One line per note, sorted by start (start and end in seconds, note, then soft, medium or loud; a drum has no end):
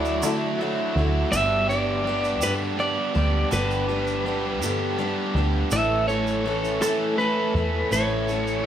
0.00 0.23 D2 loud
0.00 0.24 F#3 medium
0.00 0.24 A3 medium
0.00 0.24 D4 medium
0.00 1.31 D4 medium
0.00 0.23 E4 medium
0.00 1.31 E4 medium
0.00 0.19 F#4 medium
0.00 1.31 F#4 medium
0.00 1.31 A4 medium
0.00 0.56 D5 medium
0.05 shaker soft
0.20 0.78 D3 loud
0.20 0.59 F#4 medium
0.20 shaker loud
0.25 0.61 D3 medium
0.25 0.60 F#3 medium
0.25 0.60 A3 medium
0.25 0.61 D4 medium
0.25 0.60 E4 medium
0.60 0.97 F#3 medium
0.60 0.97 A3 medium
0.60 0.98 D4 medium
0.60 0.97 E4 medium
0.60 0.94 F#4 medium
0.95 1.23 D2 medium
0.95 1.34 E4 medium
0.95 1.30 F#4 medium
0.99 1.34 A3 medium
0.99 1.33 D4 medium
1.32 2.42 G1 loud
1.32 1.69 G2 medium
1.32 1.70 D3 medium
1.32 1.70 G3 medium
1.32 3.50 B3 medium
1.32 1.70 B3 medium
1.32 3.50 D4 medium
1.32 1.70 D4 medium
1.32 3.50 G4 medium
1.32 1.69 G4 medium
1.32 3.50 B4 medium
1.32 1.66 E5 loud
1.32 shaker loud
1.69 2.06 G3 medium
1.69 2.06 B3 soft
1.69 2.07 D4 medium
1.69 2.06 G4 medium
1.69 2.45 D5 loud
1.69 shaker soft
2.07 2.42 G3 medium
2.07 2.42 B3 medium
2.07 2.42 D4 medium
2.07 2.42 G4 medium
2.24 shaker soft
2.42 2.97 G2 loud
2.42 2.80 G2 medium
2.42 2.80 D3 medium
2.42 2.78 G3 medium
2.42 2.79 B3 medium
2.42 2.79 D4 medium
2.42 2.79 G4 medium
2.42 2.53 B4 medium
2.42 shaker medium
2.79 3.16 G3 medium
2.79 3.15 B3 medium
2.79 3.14 D4 medium
2.79 3.14 G4 medium
2.79 3.49 D5 medium
3.15 3.43 D2 medium
3.15 3.52 G3 soft
3.15 3.52 B3 soft
3.15 3.52 D4 soft
3.15 3.52 G4 medium
3.52 4.62 G1 loud
3.52 3.89 G2 medium
3.52 3.89 D3 medium
3.52 3.89 G3 medium
3.52 3.89 B3 medium
3.52 5.70 D4 medium
3.52 3.89 D4 medium
3.52 5.70 G4 medium
3.52 3.88 G4 medium
3.52 5.70 B4 medium
3.52 4.95 B4 medium
3.52 shaker medium
3.71 shaker soft
3.89 4.25 G3 soft
3.89 4.26 B3 soft
3.89 4.26 D4 medium
3.89 4.26 G4 medium
4.07 shaker soft
4.26 4.62 G3 medium
4.26 4.63 B3 medium
4.26 4.63 D4 medium
4.26 4.62 G4 medium
4.62 5.17 G2 loud
4.62 5.00 G2 medium
4.62 5.00 D3 medium
4.62 4.97 G3 medium
4.62 4.98 B3 medium
4.62 4.99 D4 medium
4.62 4.99 G4 medium
4.62 shaker medium
4.98 5.35 G3 medium
4.98 5.36 B3 medium
4.98 5.36 D4 medium
4.98 5.35 G4 medium
5.35 5.62 D2 medium
5.35 5.72 G3 soft
5.35 5.73 B3 medium
5.35 5.73 D4 medium
5.35 5.72 G4 medium
5.71 6.82 A1 loud
5.71 6.09 A2 medium
5.71 6.09 E3 medium
5.71 6.09 A3 medium
5.71 7.89 C#4 medium
5.71 6.08 C#4 medium
5.71 7.89 E4 medium
5.71 7.89 A4 medium
5.71 6.07 A4 medium
5.71 7.90 C#5 medium
5.71 6.08 E5 loud
5.71 shaker loud
6.08 6.46 A3 soft
6.08 6.46 C#4 soft
6.08 6.45 A4 medium
6.08 6.84 C#5 loud
6.08 shaker soft
6.27 shaker soft
6.46 6.82 E3 medium
6.46 6.81 A3 medium
6.46 6.81 C#4 medium
6.46 6.80 A4 medium
6.64 shaker soft
6.81 7.37 A2 medium
6.81 7.19 A2 medium
6.81 7.18 E3 medium
6.81 7.18 A3 medium
6.81 7.18 C#4 medium
6.81 7.18 A4 medium
6.81 shaker medium
7.18 7.55 E3 medium
7.18 7.56 A3 medium
7.18 7.56 C#4 medium
7.18 7.55 A4 medium
7.18 7.92 B4 medium
7.54 7.82 E2 medium
7.54 7.93 A3 soft
7.54 7.93 C#4 medium
7.54 7.92 A4 medium
7.91 8.66 A1 loud
7.91 8.29 A2 medium
7.91 8.29 E3 medium
7.91 8.30 A3 medium
7.91 8.30 C#4 medium
7.91 8.66 E4 medium
7.91 8.66 A4 medium
7.91 8.29 A4 medium
7.91 8.66 C#5 medium
7.91 shaker medium
8.28 8.66 A3 soft
8.28 8.65 C#4 medium
8.28 8.66 A4 medium
8.28 shaker soft
8.47 shaker soft